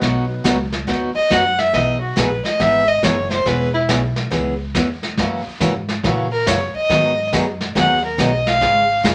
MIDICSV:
0, 0, Header, 1, 7, 480
1, 0, Start_track
1, 0, Key_signature, 5, "major"
1, 0, Tempo, 429492
1, 19, Time_signature, 4, 2, 24, 8
1, 10225, End_track
2, 0, Start_track
2, 0, Title_t, "Fiddle"
2, 0, Program_c, 0, 110
2, 1296, Note_on_c, 0, 75, 95
2, 1478, Note_on_c, 0, 78, 90
2, 1495, Note_off_c, 0, 75, 0
2, 1775, Note_on_c, 0, 76, 93
2, 1792, Note_off_c, 0, 78, 0
2, 1951, Note_on_c, 0, 75, 80
2, 1968, Note_off_c, 0, 76, 0
2, 2239, Note_off_c, 0, 75, 0
2, 2246, Note_on_c, 0, 66, 56
2, 2438, Note_on_c, 0, 71, 77
2, 2455, Note_off_c, 0, 66, 0
2, 2737, Note_off_c, 0, 71, 0
2, 2744, Note_on_c, 0, 75, 89
2, 2922, Note_on_c, 0, 76, 104
2, 2939, Note_off_c, 0, 75, 0
2, 3221, Note_on_c, 0, 75, 94
2, 3238, Note_off_c, 0, 76, 0
2, 3399, Note_on_c, 0, 73, 83
2, 3416, Note_off_c, 0, 75, 0
2, 3695, Note_off_c, 0, 73, 0
2, 3701, Note_on_c, 0, 72, 91
2, 3884, Note_on_c, 0, 71, 82
2, 3900, Note_off_c, 0, 72, 0
2, 4171, Note_off_c, 0, 71, 0
2, 4177, Note_on_c, 0, 64, 88
2, 4278, Note_off_c, 0, 64, 0
2, 7061, Note_on_c, 0, 70, 86
2, 7237, Note_on_c, 0, 73, 84
2, 7254, Note_off_c, 0, 70, 0
2, 7540, Note_off_c, 0, 73, 0
2, 7555, Note_on_c, 0, 75, 96
2, 8150, Note_off_c, 0, 75, 0
2, 8697, Note_on_c, 0, 78, 83
2, 8970, Note_off_c, 0, 78, 0
2, 8996, Note_on_c, 0, 70, 74
2, 9178, Note_on_c, 0, 75, 81
2, 9195, Note_off_c, 0, 70, 0
2, 9476, Note_on_c, 0, 77, 93
2, 9493, Note_off_c, 0, 75, 0
2, 10114, Note_off_c, 0, 77, 0
2, 10225, End_track
3, 0, Start_track
3, 0, Title_t, "Upright piano"
3, 0, Program_c, 1, 0
3, 0, Note_on_c, 1, 54, 66
3, 0, Note_on_c, 1, 59, 60
3, 0, Note_on_c, 1, 63, 63
3, 0, Note_on_c, 1, 66, 61
3, 0, Note_on_c, 1, 71, 73
3, 465, Note_off_c, 1, 54, 0
3, 465, Note_off_c, 1, 63, 0
3, 468, Note_off_c, 1, 59, 0
3, 468, Note_off_c, 1, 66, 0
3, 471, Note_off_c, 1, 71, 0
3, 10225, End_track
4, 0, Start_track
4, 0, Title_t, "Steel-string acoustic guitar"
4, 0, Program_c, 2, 25
4, 14, Note_on_c, 2, 47, 55
4, 16, Note_on_c, 2, 54, 59
4, 18, Note_on_c, 2, 59, 59
4, 24, Note_on_c, 2, 63, 59
4, 27, Note_on_c, 2, 66, 58
4, 263, Note_off_c, 2, 47, 0
4, 264, Note_off_c, 2, 54, 0
4, 265, Note_off_c, 2, 59, 0
4, 268, Note_off_c, 2, 63, 0
4, 269, Note_off_c, 2, 66, 0
4, 493, Note_on_c, 2, 47, 75
4, 494, Note_on_c, 2, 54, 82
4, 495, Note_on_c, 2, 63, 78
4, 497, Note_on_c, 2, 59, 80
4, 501, Note_on_c, 2, 66, 79
4, 627, Note_off_c, 2, 47, 0
4, 627, Note_off_c, 2, 54, 0
4, 628, Note_off_c, 2, 63, 0
4, 629, Note_off_c, 2, 59, 0
4, 631, Note_off_c, 2, 66, 0
4, 972, Note_on_c, 2, 54, 61
4, 973, Note_on_c, 2, 47, 57
4, 974, Note_on_c, 2, 59, 60
4, 977, Note_on_c, 2, 63, 65
4, 982, Note_on_c, 2, 66, 61
4, 1222, Note_off_c, 2, 54, 0
4, 1223, Note_off_c, 2, 47, 0
4, 1223, Note_off_c, 2, 59, 0
4, 1225, Note_off_c, 2, 63, 0
4, 1228, Note_off_c, 2, 66, 0
4, 1454, Note_on_c, 2, 47, 71
4, 1454, Note_on_c, 2, 54, 71
4, 1458, Note_on_c, 2, 66, 80
4, 1459, Note_on_c, 2, 63, 84
4, 1460, Note_on_c, 2, 59, 75
4, 1588, Note_off_c, 2, 47, 0
4, 1588, Note_off_c, 2, 54, 0
4, 1590, Note_off_c, 2, 63, 0
4, 1590, Note_off_c, 2, 66, 0
4, 1591, Note_off_c, 2, 59, 0
4, 1940, Note_on_c, 2, 52, 51
4, 1945, Note_on_c, 2, 59, 62
4, 1950, Note_on_c, 2, 63, 60
4, 1952, Note_on_c, 2, 68, 59
4, 2186, Note_off_c, 2, 52, 0
4, 2189, Note_off_c, 2, 59, 0
4, 2192, Note_off_c, 2, 63, 0
4, 2193, Note_off_c, 2, 68, 0
4, 2412, Note_on_c, 2, 52, 72
4, 2420, Note_on_c, 2, 59, 81
4, 2429, Note_on_c, 2, 63, 77
4, 2430, Note_on_c, 2, 68, 86
4, 2547, Note_off_c, 2, 52, 0
4, 2551, Note_off_c, 2, 59, 0
4, 2556, Note_off_c, 2, 63, 0
4, 2556, Note_off_c, 2, 68, 0
4, 2901, Note_on_c, 2, 59, 60
4, 2902, Note_on_c, 2, 52, 59
4, 2908, Note_on_c, 2, 63, 61
4, 2910, Note_on_c, 2, 68, 66
4, 3147, Note_off_c, 2, 59, 0
4, 3148, Note_off_c, 2, 52, 0
4, 3151, Note_off_c, 2, 63, 0
4, 3152, Note_off_c, 2, 68, 0
4, 3387, Note_on_c, 2, 52, 71
4, 3390, Note_on_c, 2, 59, 80
4, 3394, Note_on_c, 2, 68, 81
4, 3397, Note_on_c, 2, 63, 80
4, 3515, Note_off_c, 2, 52, 0
4, 3516, Note_off_c, 2, 59, 0
4, 3518, Note_off_c, 2, 68, 0
4, 3520, Note_off_c, 2, 63, 0
4, 3859, Note_on_c, 2, 52, 61
4, 3864, Note_on_c, 2, 59, 59
4, 3870, Note_on_c, 2, 61, 63
4, 3873, Note_on_c, 2, 68, 66
4, 4107, Note_off_c, 2, 52, 0
4, 4109, Note_off_c, 2, 59, 0
4, 4112, Note_off_c, 2, 61, 0
4, 4114, Note_off_c, 2, 68, 0
4, 4344, Note_on_c, 2, 52, 75
4, 4344, Note_on_c, 2, 59, 79
4, 4347, Note_on_c, 2, 61, 75
4, 4349, Note_on_c, 2, 68, 85
4, 4473, Note_off_c, 2, 52, 0
4, 4474, Note_off_c, 2, 59, 0
4, 4475, Note_off_c, 2, 61, 0
4, 4476, Note_off_c, 2, 68, 0
4, 4811, Note_on_c, 2, 52, 56
4, 4818, Note_on_c, 2, 59, 58
4, 4820, Note_on_c, 2, 61, 59
4, 4823, Note_on_c, 2, 68, 59
4, 5063, Note_off_c, 2, 52, 0
4, 5066, Note_off_c, 2, 59, 0
4, 5067, Note_off_c, 2, 61, 0
4, 5069, Note_off_c, 2, 68, 0
4, 5308, Note_on_c, 2, 52, 75
4, 5314, Note_on_c, 2, 59, 83
4, 5316, Note_on_c, 2, 61, 70
4, 5318, Note_on_c, 2, 68, 86
4, 5436, Note_off_c, 2, 52, 0
4, 5439, Note_off_c, 2, 59, 0
4, 5440, Note_off_c, 2, 61, 0
4, 5441, Note_off_c, 2, 68, 0
4, 5793, Note_on_c, 2, 49, 56
4, 5797, Note_on_c, 2, 58, 57
4, 5798, Note_on_c, 2, 52, 62
4, 5800, Note_on_c, 2, 61, 60
4, 5806, Note_on_c, 2, 66, 58
4, 6034, Note_off_c, 2, 49, 0
4, 6036, Note_off_c, 2, 52, 0
4, 6036, Note_off_c, 2, 58, 0
4, 6038, Note_off_c, 2, 61, 0
4, 6041, Note_off_c, 2, 66, 0
4, 6266, Note_on_c, 2, 49, 73
4, 6267, Note_on_c, 2, 52, 83
4, 6274, Note_on_c, 2, 61, 82
4, 6276, Note_on_c, 2, 58, 78
4, 6278, Note_on_c, 2, 66, 84
4, 6395, Note_off_c, 2, 49, 0
4, 6396, Note_off_c, 2, 52, 0
4, 6399, Note_off_c, 2, 61, 0
4, 6400, Note_off_c, 2, 58, 0
4, 6401, Note_off_c, 2, 66, 0
4, 6751, Note_on_c, 2, 49, 57
4, 6752, Note_on_c, 2, 52, 56
4, 6755, Note_on_c, 2, 58, 58
4, 6757, Note_on_c, 2, 61, 66
4, 6761, Note_on_c, 2, 66, 69
4, 6993, Note_off_c, 2, 49, 0
4, 6994, Note_off_c, 2, 52, 0
4, 6995, Note_off_c, 2, 58, 0
4, 6996, Note_off_c, 2, 61, 0
4, 6998, Note_off_c, 2, 66, 0
4, 7224, Note_on_c, 2, 49, 72
4, 7229, Note_on_c, 2, 52, 71
4, 7229, Note_on_c, 2, 58, 68
4, 7233, Note_on_c, 2, 61, 78
4, 7233, Note_on_c, 2, 66, 76
4, 7354, Note_off_c, 2, 49, 0
4, 7356, Note_off_c, 2, 58, 0
4, 7357, Note_off_c, 2, 52, 0
4, 7358, Note_off_c, 2, 61, 0
4, 7359, Note_off_c, 2, 66, 0
4, 7709, Note_on_c, 2, 51, 59
4, 7714, Note_on_c, 2, 54, 53
4, 7716, Note_on_c, 2, 59, 59
4, 7721, Note_on_c, 2, 63, 60
4, 7722, Note_on_c, 2, 68, 55
4, 7952, Note_off_c, 2, 51, 0
4, 7955, Note_off_c, 2, 54, 0
4, 7956, Note_off_c, 2, 59, 0
4, 7958, Note_off_c, 2, 63, 0
4, 7959, Note_off_c, 2, 68, 0
4, 8188, Note_on_c, 2, 51, 70
4, 8192, Note_on_c, 2, 54, 82
4, 8196, Note_on_c, 2, 68, 91
4, 8197, Note_on_c, 2, 59, 83
4, 8198, Note_on_c, 2, 63, 81
4, 8316, Note_off_c, 2, 51, 0
4, 8318, Note_off_c, 2, 54, 0
4, 8320, Note_off_c, 2, 59, 0
4, 8320, Note_off_c, 2, 68, 0
4, 8321, Note_off_c, 2, 63, 0
4, 8663, Note_on_c, 2, 51, 52
4, 8665, Note_on_c, 2, 54, 64
4, 8665, Note_on_c, 2, 59, 63
4, 8672, Note_on_c, 2, 63, 60
4, 8675, Note_on_c, 2, 68, 59
4, 8909, Note_off_c, 2, 51, 0
4, 8910, Note_off_c, 2, 54, 0
4, 8910, Note_off_c, 2, 59, 0
4, 8913, Note_off_c, 2, 63, 0
4, 8915, Note_off_c, 2, 68, 0
4, 9143, Note_on_c, 2, 51, 71
4, 9144, Note_on_c, 2, 54, 69
4, 9150, Note_on_c, 2, 59, 82
4, 9154, Note_on_c, 2, 68, 77
4, 9156, Note_on_c, 2, 63, 78
4, 9273, Note_off_c, 2, 51, 0
4, 9274, Note_off_c, 2, 54, 0
4, 9277, Note_off_c, 2, 59, 0
4, 9279, Note_off_c, 2, 68, 0
4, 9280, Note_off_c, 2, 63, 0
4, 9620, Note_on_c, 2, 49, 54
4, 9622, Note_on_c, 2, 56, 57
4, 9624, Note_on_c, 2, 61, 53
4, 9626, Note_on_c, 2, 65, 62
4, 9627, Note_on_c, 2, 68, 60
4, 9867, Note_off_c, 2, 49, 0
4, 9868, Note_off_c, 2, 56, 0
4, 9869, Note_off_c, 2, 61, 0
4, 9870, Note_off_c, 2, 65, 0
4, 9871, Note_off_c, 2, 68, 0
4, 10097, Note_on_c, 2, 49, 80
4, 10108, Note_on_c, 2, 56, 76
4, 10111, Note_on_c, 2, 61, 80
4, 10111, Note_on_c, 2, 65, 88
4, 10116, Note_on_c, 2, 68, 83
4, 10225, Note_off_c, 2, 49, 0
4, 10225, Note_off_c, 2, 56, 0
4, 10225, Note_off_c, 2, 61, 0
4, 10225, Note_off_c, 2, 65, 0
4, 10225, Note_off_c, 2, 68, 0
4, 10225, End_track
5, 0, Start_track
5, 0, Title_t, "Upright bass"
5, 0, Program_c, 3, 32
5, 18, Note_on_c, 3, 35, 81
5, 485, Note_off_c, 3, 35, 0
5, 501, Note_on_c, 3, 37, 86
5, 966, Note_off_c, 3, 37, 0
5, 980, Note_on_c, 3, 39, 82
5, 1269, Note_off_c, 3, 39, 0
5, 1462, Note_on_c, 3, 42, 93
5, 1927, Note_off_c, 3, 42, 0
5, 1939, Note_on_c, 3, 35, 77
5, 2406, Note_off_c, 3, 35, 0
5, 2421, Note_on_c, 3, 34, 95
5, 2710, Note_off_c, 3, 34, 0
5, 2906, Note_on_c, 3, 32, 84
5, 3370, Note_off_c, 3, 32, 0
5, 3382, Note_on_c, 3, 30, 96
5, 3848, Note_off_c, 3, 30, 0
5, 3867, Note_on_c, 3, 28, 85
5, 4331, Note_off_c, 3, 28, 0
5, 4347, Note_on_c, 3, 35, 90
5, 4811, Note_off_c, 3, 35, 0
5, 4821, Note_on_c, 3, 37, 82
5, 5288, Note_off_c, 3, 37, 0
5, 5306, Note_on_c, 3, 40, 88
5, 5771, Note_off_c, 3, 40, 0
5, 5785, Note_on_c, 3, 42, 81
5, 6073, Note_off_c, 3, 42, 0
5, 6260, Note_on_c, 3, 44, 85
5, 6727, Note_off_c, 3, 44, 0
5, 6746, Note_on_c, 3, 46, 84
5, 7210, Note_off_c, 3, 46, 0
5, 7227, Note_on_c, 3, 42, 89
5, 7514, Note_off_c, 3, 42, 0
5, 7702, Note_on_c, 3, 44, 78
5, 8168, Note_off_c, 3, 44, 0
5, 8189, Note_on_c, 3, 42, 92
5, 8652, Note_off_c, 3, 42, 0
5, 8668, Note_on_c, 3, 39, 86
5, 9131, Note_off_c, 3, 39, 0
5, 9142, Note_on_c, 3, 35, 89
5, 9608, Note_off_c, 3, 35, 0
5, 9625, Note_on_c, 3, 32, 83
5, 10090, Note_off_c, 3, 32, 0
5, 10106, Note_on_c, 3, 30, 90
5, 10225, Note_off_c, 3, 30, 0
5, 10225, End_track
6, 0, Start_track
6, 0, Title_t, "Muted upright bass strokes"
6, 1291, Note_on_c, 9, 29, 38
6, 1402, Note_off_c, 9, 29, 0
6, 2739, Note_on_c, 9, 29, 39
6, 2851, Note_off_c, 9, 29, 0
6, 6103, Note_on_c, 9, 29, 40
6, 6215, Note_off_c, 9, 29, 0
6, 7538, Note_on_c, 9, 29, 41
6, 7649, Note_off_c, 9, 29, 0
6, 10225, End_track
7, 0, Start_track
7, 0, Title_t, "Drums"
7, 18, Note_on_c, 9, 36, 25
7, 19, Note_on_c, 9, 25, 53
7, 19, Note_on_c, 9, 38, 45
7, 130, Note_off_c, 9, 36, 0
7, 131, Note_off_c, 9, 38, 0
7, 500, Note_on_c, 9, 36, 19
7, 501, Note_on_c, 9, 38, 61
7, 501, Note_on_c, 9, 44, 58
7, 612, Note_off_c, 9, 36, 0
7, 613, Note_off_c, 9, 38, 0
7, 613, Note_off_c, 9, 44, 0
7, 810, Note_on_c, 9, 38, 41
7, 921, Note_off_c, 9, 38, 0
7, 981, Note_on_c, 9, 36, 23
7, 984, Note_off_c, 9, 25, 0
7, 984, Note_on_c, 9, 25, 47
7, 984, Note_on_c, 9, 38, 47
7, 1093, Note_off_c, 9, 36, 0
7, 1096, Note_off_c, 9, 38, 0
7, 1462, Note_on_c, 9, 36, 18
7, 1462, Note_on_c, 9, 38, 58
7, 1462, Note_on_c, 9, 44, 52
7, 1573, Note_off_c, 9, 36, 0
7, 1574, Note_off_c, 9, 38, 0
7, 1574, Note_off_c, 9, 44, 0
7, 1771, Note_on_c, 9, 38, 40
7, 1882, Note_off_c, 9, 38, 0
7, 1939, Note_off_c, 9, 25, 0
7, 1939, Note_on_c, 9, 25, 45
7, 1939, Note_on_c, 9, 38, 47
7, 1942, Note_on_c, 9, 36, 23
7, 2051, Note_off_c, 9, 38, 0
7, 2054, Note_off_c, 9, 36, 0
7, 2422, Note_on_c, 9, 38, 61
7, 2422, Note_on_c, 9, 44, 52
7, 2423, Note_on_c, 9, 36, 21
7, 2534, Note_off_c, 9, 38, 0
7, 2534, Note_off_c, 9, 44, 0
7, 2535, Note_off_c, 9, 36, 0
7, 2736, Note_on_c, 9, 38, 39
7, 2848, Note_off_c, 9, 38, 0
7, 2904, Note_on_c, 9, 36, 21
7, 2906, Note_off_c, 9, 25, 0
7, 2906, Note_on_c, 9, 25, 49
7, 2906, Note_on_c, 9, 38, 50
7, 3016, Note_off_c, 9, 36, 0
7, 3018, Note_off_c, 9, 38, 0
7, 3384, Note_on_c, 9, 36, 21
7, 3386, Note_on_c, 9, 38, 59
7, 3386, Note_on_c, 9, 44, 55
7, 3496, Note_off_c, 9, 36, 0
7, 3498, Note_off_c, 9, 38, 0
7, 3498, Note_off_c, 9, 44, 0
7, 3693, Note_on_c, 9, 38, 40
7, 3805, Note_off_c, 9, 38, 0
7, 3864, Note_on_c, 9, 36, 22
7, 3867, Note_off_c, 9, 25, 0
7, 3867, Note_on_c, 9, 25, 51
7, 3867, Note_on_c, 9, 38, 47
7, 3976, Note_off_c, 9, 36, 0
7, 3978, Note_off_c, 9, 38, 0
7, 4344, Note_on_c, 9, 36, 22
7, 4346, Note_on_c, 9, 38, 64
7, 4346, Note_on_c, 9, 44, 59
7, 4456, Note_off_c, 9, 36, 0
7, 4458, Note_off_c, 9, 38, 0
7, 4458, Note_off_c, 9, 44, 0
7, 4651, Note_on_c, 9, 38, 42
7, 4763, Note_off_c, 9, 38, 0
7, 4822, Note_off_c, 9, 25, 0
7, 4822, Note_on_c, 9, 25, 48
7, 4822, Note_on_c, 9, 38, 48
7, 4824, Note_on_c, 9, 36, 25
7, 4934, Note_off_c, 9, 38, 0
7, 4935, Note_off_c, 9, 36, 0
7, 5304, Note_on_c, 9, 36, 23
7, 5305, Note_on_c, 9, 38, 59
7, 5305, Note_on_c, 9, 44, 58
7, 5416, Note_off_c, 9, 36, 0
7, 5416, Note_off_c, 9, 38, 0
7, 5416, Note_off_c, 9, 44, 0
7, 5620, Note_on_c, 9, 38, 40
7, 5732, Note_off_c, 9, 38, 0
7, 5783, Note_off_c, 9, 25, 0
7, 5783, Note_on_c, 9, 25, 53
7, 5783, Note_on_c, 9, 38, 45
7, 5784, Note_on_c, 9, 36, 25
7, 5894, Note_off_c, 9, 38, 0
7, 5896, Note_off_c, 9, 36, 0
7, 6264, Note_on_c, 9, 36, 20
7, 6264, Note_on_c, 9, 38, 64
7, 6264, Note_on_c, 9, 44, 59
7, 6376, Note_off_c, 9, 36, 0
7, 6376, Note_off_c, 9, 38, 0
7, 6376, Note_off_c, 9, 44, 0
7, 6578, Note_on_c, 9, 38, 43
7, 6690, Note_off_c, 9, 38, 0
7, 6745, Note_on_c, 9, 36, 28
7, 6751, Note_off_c, 9, 25, 0
7, 6751, Note_on_c, 9, 25, 53
7, 6751, Note_on_c, 9, 38, 50
7, 6857, Note_off_c, 9, 36, 0
7, 6863, Note_off_c, 9, 38, 0
7, 7227, Note_on_c, 9, 36, 21
7, 7229, Note_on_c, 9, 38, 61
7, 7229, Note_on_c, 9, 44, 63
7, 7338, Note_off_c, 9, 36, 0
7, 7341, Note_off_c, 9, 38, 0
7, 7341, Note_off_c, 9, 44, 0
7, 7706, Note_on_c, 9, 36, 22
7, 7709, Note_off_c, 9, 25, 0
7, 7709, Note_on_c, 9, 25, 47
7, 7709, Note_on_c, 9, 38, 47
7, 7817, Note_off_c, 9, 36, 0
7, 7821, Note_off_c, 9, 38, 0
7, 8187, Note_on_c, 9, 36, 24
7, 8190, Note_on_c, 9, 38, 60
7, 8190, Note_on_c, 9, 44, 51
7, 8299, Note_off_c, 9, 36, 0
7, 8302, Note_off_c, 9, 38, 0
7, 8302, Note_off_c, 9, 44, 0
7, 8500, Note_on_c, 9, 38, 41
7, 8612, Note_off_c, 9, 38, 0
7, 8666, Note_on_c, 9, 36, 26
7, 8671, Note_off_c, 9, 25, 0
7, 8671, Note_on_c, 9, 25, 47
7, 8671, Note_on_c, 9, 38, 49
7, 8778, Note_off_c, 9, 36, 0
7, 8783, Note_off_c, 9, 38, 0
7, 9145, Note_on_c, 9, 36, 22
7, 9148, Note_on_c, 9, 38, 59
7, 9148, Note_on_c, 9, 44, 53
7, 9257, Note_off_c, 9, 36, 0
7, 9260, Note_off_c, 9, 38, 0
7, 9260, Note_off_c, 9, 44, 0
7, 9463, Note_on_c, 9, 38, 43
7, 9575, Note_off_c, 9, 38, 0
7, 9627, Note_on_c, 9, 36, 28
7, 9633, Note_off_c, 9, 25, 0
7, 9633, Note_on_c, 9, 25, 51
7, 9633, Note_on_c, 9, 38, 47
7, 9739, Note_off_c, 9, 36, 0
7, 9745, Note_off_c, 9, 38, 0
7, 10105, Note_on_c, 9, 36, 25
7, 10110, Note_on_c, 9, 38, 67
7, 10110, Note_on_c, 9, 44, 64
7, 10217, Note_off_c, 9, 36, 0
7, 10221, Note_off_c, 9, 38, 0
7, 10221, Note_off_c, 9, 44, 0
7, 10225, Note_off_c, 9, 25, 0
7, 10225, End_track
0, 0, End_of_file